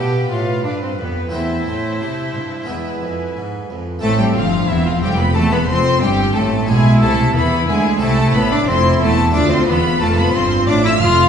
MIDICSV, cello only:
0, 0, Header, 1, 2, 480
1, 0, Start_track
1, 0, Key_signature, 0, "minor"
1, 0, Tempo, 675676
1, 938, Time_signature, 4, 2, 24, 8
1, 3336, Tempo, 664452
1, 8097, End_track
2, 0, Start_track
2, 0, Title_t, "Cello"
2, 0, Program_c, 0, 42
2, 0, Note_on_c, 0, 67, 75
2, 209, Note_off_c, 0, 67, 0
2, 219, Note_on_c, 0, 65, 70
2, 455, Note_on_c, 0, 62, 61
2, 466, Note_off_c, 0, 65, 0
2, 574, Note_off_c, 0, 62, 0
2, 587, Note_on_c, 0, 60, 50
2, 633, Note_off_c, 0, 60, 0
2, 707, Note_on_c, 0, 59, 59
2, 940, Note_off_c, 0, 59, 0
2, 945, Note_on_c, 0, 64, 65
2, 2357, Note_off_c, 0, 64, 0
2, 2862, Note_on_c, 0, 57, 93
2, 2972, Note_off_c, 0, 57, 0
2, 2981, Note_on_c, 0, 55, 82
2, 3028, Note_off_c, 0, 55, 0
2, 3110, Note_on_c, 0, 53, 82
2, 3349, Note_on_c, 0, 52, 79
2, 3359, Note_off_c, 0, 53, 0
2, 3463, Note_off_c, 0, 52, 0
2, 3468, Note_on_c, 0, 53, 82
2, 3589, Note_on_c, 0, 55, 79
2, 3600, Note_off_c, 0, 53, 0
2, 3697, Note_on_c, 0, 59, 76
2, 3707, Note_off_c, 0, 55, 0
2, 3811, Note_off_c, 0, 59, 0
2, 3816, Note_on_c, 0, 57, 102
2, 3931, Note_on_c, 0, 59, 91
2, 3942, Note_off_c, 0, 57, 0
2, 4055, Note_off_c, 0, 59, 0
2, 4064, Note_on_c, 0, 60, 90
2, 4297, Note_on_c, 0, 55, 86
2, 4308, Note_off_c, 0, 60, 0
2, 4533, Note_off_c, 0, 55, 0
2, 4537, Note_on_c, 0, 57, 77
2, 4773, Note_on_c, 0, 56, 90
2, 4783, Note_off_c, 0, 57, 0
2, 5008, Note_on_c, 0, 57, 86
2, 5019, Note_off_c, 0, 56, 0
2, 5246, Note_on_c, 0, 59, 89
2, 5257, Note_off_c, 0, 57, 0
2, 5492, Note_off_c, 0, 59, 0
2, 5498, Note_on_c, 0, 56, 83
2, 5734, Note_on_c, 0, 57, 96
2, 5744, Note_off_c, 0, 56, 0
2, 5975, Note_on_c, 0, 59, 96
2, 5986, Note_off_c, 0, 57, 0
2, 6097, Note_on_c, 0, 62, 93
2, 6108, Note_off_c, 0, 59, 0
2, 6212, Note_on_c, 0, 60, 91
2, 6223, Note_off_c, 0, 62, 0
2, 6452, Note_off_c, 0, 60, 0
2, 6457, Note_on_c, 0, 57, 94
2, 6693, Note_off_c, 0, 57, 0
2, 6697, Note_on_c, 0, 62, 98
2, 6815, Note_off_c, 0, 62, 0
2, 6822, Note_on_c, 0, 60, 89
2, 6929, Note_off_c, 0, 60, 0
2, 6933, Note_on_c, 0, 59, 90
2, 7178, Note_on_c, 0, 57, 90
2, 7189, Note_off_c, 0, 59, 0
2, 7300, Note_on_c, 0, 59, 89
2, 7311, Note_off_c, 0, 57, 0
2, 7423, Note_on_c, 0, 60, 91
2, 7434, Note_off_c, 0, 59, 0
2, 7660, Note_on_c, 0, 62, 108
2, 7670, Note_off_c, 0, 60, 0
2, 7774, Note_off_c, 0, 62, 0
2, 7779, Note_on_c, 0, 64, 91
2, 7826, Note_off_c, 0, 64, 0
2, 7901, Note_on_c, 0, 65, 103
2, 8097, Note_off_c, 0, 65, 0
2, 8097, End_track
0, 0, End_of_file